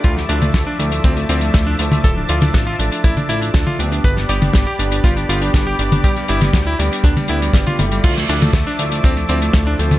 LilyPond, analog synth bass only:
\new Staff \with { instrumentName = "Analog synth bass" } { \clef bass \time 4/4 \key d \dorian \tempo 4 = 120 d,8 d,8 d,8 d,8 d,8 d,8 d,8 d,8 | d,,8 d,8 a,,8 a,,8 a,,8 a,,8 d,8 d,8 | g,,8 g,,8 g,,8 g,,8 g,,8 g,,8 g,,8 g,,8 | g,8 g,,8 d,8 d,8 d,8 d,8 g,,8 g,,8 |
d,8 d,8 d,8 d,8 d,8 d,8 d,8 d,8 | }